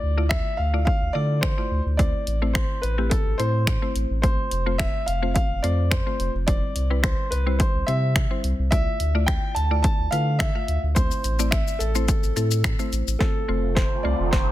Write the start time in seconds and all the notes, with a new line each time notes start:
Already playing: A3 E4 F4 D5
0.03 D2
0.17 A3 E4 F4 D5
0.29 E5, finger snap, kick
0.57 D2 F5
0.73 A3 E4 F4 D5
0.85 F5, kick
1.02 D2
1.13 D3 A3 E4 F4 D5
1.41 C5, finger snap, kick
1.58 A3 E4 F4 D5
1.71 D2
1.86 D2
1.97 A3 C4 E4 C5 D5, kick, closed hi-hat
2.27 A1, closed hi-hat
2.42 A3 C4 E4 C5
2.53 C5, finger snap, kick, closed hi-hat
2.82 A1 B4, closed hi-hat
2.98 A3 C4 E4 G4
3.10 A4, kick, closed hi-hat
3.26 A1
3.38 A2 A3 C4 E4 C5, closed hi-hat
3.67 finger snap, kick, closed hi-hat
3.82 A3 C4 E4 C5
3.96 A1, closed hi-hat
4.10 A1
4.22 A3 C4 F4 C5, kick, closed hi-hat
4.51 F1, closed hi-hat
4.66 A3 C4 F4 C5
4.78 E5, finger snap, kick, closed hi-hat
5.06 F1 F5, closed hi-hat
5.22 A3 C4 F4 C5
5.34 F5, kick, closed hi-hat
5.50 F1
5.63 F2 A3 C4 F4 C5 D5, closed hi-hat
5.91 C5, finger snap, kick, closed hi-hat
6.06 A3 C4 F4 C5
6.20 F1, closed hi-hat
6.35 F1
6.47 G3 C4 E4 C5 D5, kick, closed hi-hat
6.76 C2, closed hi-hat
6.90 G3 C4 E4 B4
7.03 C5, finger snap, kick, closed hi-hat
7.31 C2 B4, closed hi-hat
7.46 G3 C4 E4 C5
7.59 C5, kick, closed hi-hat
7.75 C2
7.87 C3 G3 C4 E4 C5 E5, closed hi-hat
8.16 finger snap, kick, closed hi-hat
8.30 G3 C4 E4 C5
8.44 C2, closed hi-hat
8.59 C2
8.71 A3 E4 F4 D5 E5, kick, closed hi-hat
9.00 D2, closed hi-hat
9.15 A3 E4 F4 D5
9.26 G5, finger snap, kick, closed hi-hat
9.55 D2 A5, closed hi-hat
9.71 A3 E4 F4 D5
9.83 A5, kick, closed hi-hat
9.99 D2
10.11 D3 A3 E4 F4 B4 F5, closed hi-hat
10.39 E5, finger snap, kick, closed hi-hat
10.55 A3 F4 E5 F5
10.68 D2, closed hi-hat
10.83 D2
10.95 A3 C4 E4 C5, kick, closed hi-hat, shaker
11.11 shaker
11.24 A1, closed hi-hat, shaker
11.39 A3 C4 E4 D5, shaker
11.51 E5, finger snap, kick, closed hi-hat, shaker
11.68 shaker
11.79 A1 A4, closed hi-hat, shaker
11.95 A3 C4 E4 C5, shaker
12.08 kick, closed hi-hat, shaker
12.23 A1, shaker
12.36 A2 A3 C4 E4 A4, closed hi-hat, shaker
12.51 shaker
12.64 finger snap, kick, closed hi-hat, shaker
12.79 A3 C4 E4 C5, shaker
12.93 A1, closed hi-hat, shaker
13.07 A1, shaker
13.19 A3 C4 F4 A4 C5, kick, snare, riser
13.48 F1 A3 C4 F4 C5
13.75 C5, kick, snare
14.03 C2 A3 C4 F4 C5 D5
14.20 F1
14.31 C5, kick, snare